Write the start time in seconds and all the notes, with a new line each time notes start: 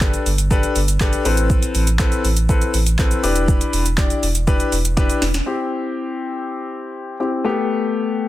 Already playing: G1
0.01 D4 G4 A4 B4, kick, clap, shaker
0.14 closed hi-hat, shaker
0.26 G1, open hi-hat, shaker
0.38 closed hi-hat, shaker
0.51 D4 G4 A4 B4, kick, shaker
0.63 closed hi-hat, shaker
0.76 G1, open hi-hat, shaker
0.88 closed hi-hat, shaker
1.00 D4 G4 A4 B4, kick, clap, shaker
1.13 closed hi-hat, shaker
1.25 A1 C4 E4 A4 B4, open hi-hat, shaker
1.37 closed hi-hat, shaker
1.50 kick, shaker
1.63 closed hi-hat, shaker
1.75 A1, open hi-hat, shaker
1.87 closed hi-hat, shaker
1.99 C4 E4 A4 B4, kick, clap, shaker
2.12 closed hi-hat, shaker
2.24 A1, open hi-hat, shaker
2.37 closed hi-hat, shaker
2.49 C4 E4 A4 B4, kick, shaker
2.61 closed hi-hat, shaker
2.74 A1, open hi-hat, shaker
2.86 closed hi-hat, shaker
2.99 C4 E4 A4 B4, kick, clap, shaker
3.11 closed hi-hat, shaker
3.23 E1 D4 E4 G4 B4, open hi-hat, shaker
3.36 closed hi-hat, shaker
3.48 kick, shaker
3.61 closed hi-hat, shaker
3.73 E1, open hi-hat, shaker
3.86 closed hi-hat, shaker
3.98 D4 E4 G4 D5, kick, clap, shaker
4.10 closed hi-hat, shaker
4.23 E1, open hi-hat, shaker
4.35 closed hi-hat, shaker
4.47 D4 E4 G4 B4, kick, shaker
4.60 closed hi-hat, shaker
4.72 E1, open hi-hat, shaker
4.85 closed hi-hat, shaker
4.97 D4 E4 G4 B4, kick, snare, shaker
5.10 closed hi-hat, shaker
5.22 E1, snare, open hi-hat, shaker
5.34 snare, closed hi-hat, shaker
5.46 C4 E4 G4
7.20 C4 E4 G4
7.44 A3 B3 G4